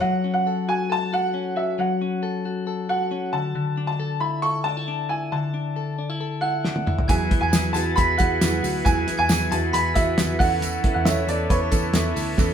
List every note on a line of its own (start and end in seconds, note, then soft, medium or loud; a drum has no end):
0.00 1.78 F#3 medium
0.00 0.46 A4 medium
0.00 3.29 C#5 medium
0.00 0.32 F#5 loud
0.24 1.33 C#4 medium
0.34 0.69 F#5 loud
0.47 0.89 A4 medium
0.68 1.12 F#4 medium
0.68 0.91 G#5 loud
0.90 2.22 A4 medium
0.90 1.14 A5 loud
1.13 1.56 F#4 medium
1.13 1.59 F#5 loud
1.34 2.00 C#4 medium
1.56 2.45 F#4 medium
1.56 1.77 E5 medium
1.79 4.24 F#3 medium
1.79 2.42 F#5 medium
2.02 3.10 C#4 medium
2.23 2.67 A4 medium
2.45 2.89 F#4 medium
2.67 3.99 A4 medium
2.89 4.20 F#4 medium
2.89 3.35 F#5 loud
3.11 3.38 C#4 medium
3.33 3.54 D3 medium
3.33 3.86 A5 loud
3.55 5.31 D3 medium
3.77 4.64 D4 medium
3.87 4.19 A5 loud
4.00 4.42 A4 medium
4.20 4.65 E4 medium
4.20 4.42 B5 medium
4.42 5.75 A4 medium
4.42 4.66 C#6 loud
4.64 4.77 D4 medium
4.64 5.11 A5 loud
4.77 5.08 E4 medium
4.88 5.53 D4 medium
5.09 5.98 E4 medium
5.09 5.33 G#5 medium
5.32 7.08 D3 medium
5.32 5.95 A5 medium
5.54 5.97 D4 medium
5.76 6.19 A4 medium
5.98 6.10 D4 medium
6.10 6.41 E4 medium
6.21 7.13 A4 medium
6.41 6.86 E4 medium
6.41 7.04 F#5 loud
6.41 7.05 F#6 loud
6.64 7.13 D4 medium
6.64 snare medium
6.76 high tom medium
6.87 7.74 E4 medium
6.87 mid tom medium
6.99 floor tom medium
7.08 7.28 E2 loud
7.08 8.85 E3 medium
7.08 7.31 E3 medium
7.08 7.31 F#3 medium
7.08 7.32 B3 medium
7.08 10.36 E4 medium
7.08 7.31 E4 medium
7.08 10.37 F#4 medium
7.08 10.37 G#4 medium
7.08 7.30 G#4 loud
7.08 10.37 B4 medium
7.08 7.39 G#5 loud
7.08 7.39 G#6 loud
7.08 kick loud
7.08 closed hi-hat loud
7.08 tambourine medium
7.31 8.41 B3 medium
7.31 7.53 B3 soft
7.31 7.53 E4 soft
7.31 7.53 G#4 medium
7.31 kick loud
7.31 closed hi-hat medium
7.41 7.51 E2 loud
7.41 7.76 G#5 loud
7.41 7.73 G#6 medium
7.53 7.71 E2 loud
7.53 7.75 F#3 medium
7.53 7.76 B3 medium
7.53 7.76 E4 medium
7.53 7.95 G#4 medium
7.53 7.74 G#4 medium
7.53 snare loud
7.53 closed hi-hat medium
7.53 tambourine loud
7.73 7.93 E2 medium
7.73 8.20 E4 medium
7.73 8.17 F#4 medium
7.73 8.18 G#4 medium
7.73 7.97 A5 loud
7.73 7.96 A6 medium
7.73 closed hi-hat medium
7.73 tambourine medium
7.78 8.21 B3 medium
7.96 8.16 E2 loud
7.96 9.28 G#4 medium
7.96 8.19 B5 loud
7.96 8.18 B6 loud
7.96 kick loud
7.96 closed hi-hat medium
7.96 tambourine soft
8.18 8.38 E2 medium
8.18 8.41 B3 soft
8.18 8.42 E4 medium
8.18 8.62 F#4 medium
8.18 8.42 G#4 medium
8.18 8.81 F#5 loud
8.18 8.82 F#6 loud
8.18 kick loud
8.18 closed hi-hat medium
8.18 tambourine medium
8.41 8.60 E2 loud
8.41 8.86 F#3 medium
8.41 9.06 B3 medium
8.41 8.87 B3 medium
8.41 8.88 E4 medium
8.41 8.87 G#4 medium
8.41 snare loud
8.41 closed hi-hat medium
8.41 tambourine medium
8.63 8.82 D2 medium
8.63 9.50 F#4 medium
8.63 open hi-hat medium
8.63 tambourine medium
8.85 9.04 E2 loud
8.85 10.39 E3 medium
8.85 9.08 E3 medium
8.85 9.09 F#3 medium
8.85 9.09 B3 medium
8.85 9.09 E4 loud
8.85 9.07 G#4 medium
8.85 9.17 G#5 loud
8.85 9.16 G#6 medium
8.85 kick loud
8.85 closed hi-hat medium
8.85 tambourine medium
9.07 10.18 B3 medium
9.07 9.30 B3 soft
9.07 9.31 E4 soft
9.07 9.30 G#4 medium
9.07 closed hi-hat medium
9.07 tambourine soft
9.18 9.28 E2 loud
9.18 9.53 G#5 loud
9.18 9.49 G#6 medium
9.29 9.48 E2 loud
9.29 9.52 F#3 medium
9.29 9.52 B3 medium
9.29 9.52 E4 medium
9.29 9.72 G#4 medium
9.29 9.51 G#4 medium
9.29 snare loud
9.29 closed hi-hat medium
9.29 tambourine medium
9.51 9.70 E2 loud
9.51 9.98 B3 medium
9.51 9.97 E4 medium
9.51 9.94 F#4 medium
9.51 9.95 G#4 medium
9.51 9.56 A5 loud
9.51 9.61 A6 medium
9.51 closed hi-hat medium
9.51 tambourine soft
9.73 9.92 E2 loud
9.73 10.44 G#4 medium
9.73 9.96 B5 loud
9.73 9.94 B6 loud
9.73 closed hi-hat medium
9.94 10.14 E2 medium
9.94 10.19 E4 medium
9.94 10.44 F#4 medium
9.94 10.18 G#4 medium
9.94 10.41 E5 loud
9.94 10.36 E6 medium
9.94 kick loud
9.94 closed hi-hat medium
9.94 tambourine medium
9.98 10.18 B3 medium
10.18 10.36 E2 loud
10.18 10.40 F#3 medium
10.18 11.09 B3 medium
10.18 10.40 B3 medium
10.18 10.40 E4 medium
10.18 10.40 G#4 medium
10.18 snare loud
10.18 closed hi-hat medium
10.18 tambourine medium
10.39 10.77 E2 loud
10.39 10.60 E3 medium
10.39 10.85 E3 medium
10.39 10.84 B3 medium
10.39 12.54 C#4 medium
10.39 10.84 C#4 medium
10.39 12.54 E4 medium
10.39 12.54 A4 medium
10.39 10.83 A4 medium
10.39 12.54 B4 medium
10.39 10.93 F#5 loud
10.39 10.91 F#6 medium
10.39 kick loud
10.39 open hi-hat medium
10.39 tambourine medium
10.61 12.37 E3 medium
10.61 closed hi-hat medium
10.61 tambourine medium
10.84 11.05 B3 soft
10.84 11.05 C#4 medium
10.84 11.92 E4 medium
10.84 11.06 A4 medium
10.84 kick loud
10.84 closed hi-hat medium
10.94 11.04 E2 loud
10.94 11.06 F#5 medium
10.94 11.05 F#6 medium
11.05 11.24 E2 loud
11.05 11.28 E3 medium
11.05 11.28 B3 medium
11.05 11.27 C#4 medium
11.05 11.26 A4 medium
11.05 11.50 C#5 medium
11.05 11.29 E5 loud
11.05 11.27 E6 medium
11.05 snare loud
11.05 closed hi-hat medium
11.05 tambourine loud
11.27 11.46 E2 loud
11.27 11.72 B3 medium
11.27 11.71 C#4 medium
11.27 11.71 A4 medium
11.27 11.51 D5 medium
11.27 11.49 D6 medium
11.27 closed hi-hat medium
11.27 tambourine medium
11.50 11.68 E2 loud
11.50 11.61 B4 medium
11.50 12.54 C#5 medium
11.50 12.54 C#6 medium
11.50 kick loud
11.50 closed hi-hat medium
11.50 tambourine soft
11.61 12.54 C#5 medium
11.71 11.91 E2 loud
11.71 11.93 B3 medium
11.71 11.94 C#4 medium
11.71 11.94 A4 medium
11.71 12.16 A4 medium
11.71 kick loud
11.71 closed hi-hat medium
11.71 tambourine medium
11.93 12.12 E2 loud
11.93 12.36 E3 medium
11.93 12.37 B3 medium
11.93 12.38 C#4 medium
11.93 12.54 E4 medium
11.93 12.39 A4 medium
11.93 snare loud
11.93 closed hi-hat loud
11.93 tambourine medium
12.16 12.34 D2 medium
12.16 12.54 A4 medium
12.16 open hi-hat medium
12.16 tambourine medium
12.38 12.54 E2 loud
12.38 12.54 E3 loud
12.38 12.54 E3 medium
12.38 12.54 B3 loud
12.38 12.54 C#4 loud
12.38 12.54 A4 loud
12.38 kick loud
12.38 snare medium
12.38 tambourine medium